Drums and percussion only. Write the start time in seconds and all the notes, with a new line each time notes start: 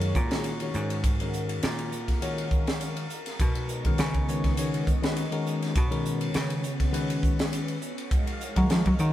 0.01 ride
0.15 kick, hi-hat pedal
0.31 snare, ride
0.44 hi-hat pedal, ride
0.60 ride
0.74 hi-hat pedal
0.90 ride
1.04 kick, hi-hat pedal, ride
1.20 ride
1.33 hi-hat pedal
1.49 ride
1.63 snare, hi-hat pedal, ride
1.79 ride
1.92 hi-hat pedal
2.08 kick, snare, ride
2.22 hi-hat pedal, ride
2.38 ride
2.51 kick, hi-hat pedal
2.67 snare, ride
2.81 snare, hi-hat pedal, ride
2.97 ride
3.10 hi-hat pedal
3.26 snare, ride
3.40 kick, hi-hat pedal, ride
3.55 ride
3.69 hi-hat pedal
3.85 kick, ride
3.98 snare, hi-hat pedal, ride
4.14 kick, ride
4.28 hi-hat pedal
4.44 kick, snare, ride
4.57 hi-hat pedal, ride
4.74 ride
4.87 kick, hi-hat pedal
5.03 snare, ride
5.17 snare, hi-hat pedal, ride
5.32 ride
5.46 hi-hat pedal
5.62 snare, ride
5.76 kick, hi-hat pedal, ride
5.92 ride
6.05 hi-hat pedal
6.21 ride
6.34 snare, hi-hat pedal, ride
6.50 ride
6.64 hi-hat pedal
6.80 kick, snare, ride
6.94 hi-hat pedal, ride
7.10 ride
7.23 kick, hi-hat pedal
7.39 snare, ride
7.53 hi-hat pedal, ride
7.68 ride
7.82 hi-hat pedal
7.98 ride
8.11 kick, hi-hat pedal, ride
8.27 ride
8.41 hi-hat pedal
8.56 kick, ride
8.70 snare, hi-hat pedal, ride
8.86 kick, ride
8.99 hi-hat pedal